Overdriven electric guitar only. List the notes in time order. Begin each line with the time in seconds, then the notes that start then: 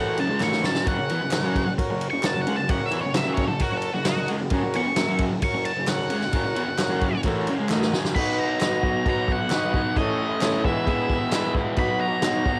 Already playing: A2 E3 A3
0.18 F#2 C#3
0.30 C#3 G#3
0.41 A2 E3 A3
0.63 F#2 C#3 F#3
0.87 F#2 C#3
0.98 F#2 C#3
1.10 E3 B3
1.21 F#2 C#3
1.32 F#2 C#3
1.42 F#2 C#3 F#3
1.66 F#2 C#3
1.78 muted overdriven electric guitar stroke
1.90 F#2 C#3
2.13 F#2 C#3
2.24 F#2 C#3
2.35 F#2 C#3
2.47 C#3 G#3
2.58 F#2 C#3
2.68 F#2 C#3
2.80 F#2 C#3
2.91 E3 B3
3.03 F#2 C#3
3.14 F#2 C#3
3.26 F#2 C#3 F#3
3.48 F#2 C#3
3.61 muted overdriven electric guitar stroke
3.72 F#2 C#3
3.95 F#2 C#3
4.06 F#2 C#3
4.18 F#2 C#3
4.29 C#3 G#3
4.41 F#2 C#3
4.51 F#2 C#3
4.64 F#2 C#3
4.75 E3 B3
4.87 F#2 C#3
4.98 F#2 C#3
5.09 F#2 C#3 F#3
5.33 F#2 C#3
5.43 muted overdriven electric guitar stroke
5.54 F#2 C#3
5.77 F#2 C#3
5.88 F#2 C#3
6.00 F#2 C#3
6.10 C#3 G#3
6.22 F#2 C#3
6.33 F#2 C#3
6.44 F#2 C#3
6.55 E3 B3
6.66 F#2 C#3
6.79 F#2 C#3
6.89 F#2 C#3 F#3
7.13 F#2 C#3
7.25 A2 E3 A3
7.48 F#2 C#3
7.59 C#3 G#3
7.69 A2 E3 A3
7.92 F#2 C#3 F#3
8.16 B2 F#3 B3 D#4 F#4
8.60 B2 F#3 B3 D#4 F#4
8.81 B2 F#3 B3 D#4 F#4
9.06 B2 F#3 B3 D#4 F#4
9.50 B2 F#3 B3 D#4 F#4
9.73 B2 F#3 B3 D#4 F#4
9.96 A2 E3 A3 C#4 E4
10.41 A2 E3 A3 C#4 E4
10.64 E2 B2 E3 G#3 B3 E4
10.86 E2 B2 E3 G#3 B3 E4
11.32 E2 B2 E3 G#3 B3 E4
11.54 E2 B2 E3 G#3 B3 E4
11.76 B2 F#3 B3 D#4 F#4
12.22 B2 F#3 B3 D#4 F#4
12.45 B2 F#3 B3 D#4 F#4